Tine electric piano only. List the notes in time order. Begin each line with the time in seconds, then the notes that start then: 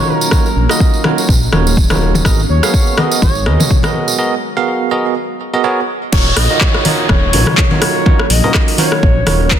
Already playing: D#4 F4 F#4 A#4 C#5
0.32 D#4 F4 F#4 A#4 C#5
0.70 D#4 F4 F#4 A#4 D#5
1.04 D#4 F4 F#4 A#4 C#5
1.53 D#4 F4 F#4 A#4 C#5
1.90 D#4 F4 F#4 A#4 C#5
2.25 B3 F#4 G#4 A#4 D#5
2.63 B3 F#4 G#4 A#4 F5
2.98 B3 F#4 G#4 A#4 D#5
3.46 B3 F#4 G#4 A#4 D#5
3.84 B3 F#4 G#4 A#4 D#5
4.18 B3 F#4 G#4 A#4 D#5
4.57 B3 F#4 G#4 A#4 F5
4.91 B3 F#4 G#4 A#4 D#5
5.54 B3 F#4 G#4 A#4 D#5
5.64 B3 F#4 G#4 A#4 C#5
6.12 D#4 F4 F#4 A#4 C#5
6.50 D#4 F4 F#4 A#4 D#5
6.85 D#4 F4 F#4 A#4 C#5
7.33 D#4 F4 F#4 A#4 C#5
7.71 D#4 F4 F#4 A#4 C#5
8.06 D#4 F4 F#4 A#4 C#5
8.44 D#4 F4 F#4 A#4 D#5
8.79 D#4 F4 F#4 A#4 C#5
9.27 D#4 F4 F#4 A#4 C#5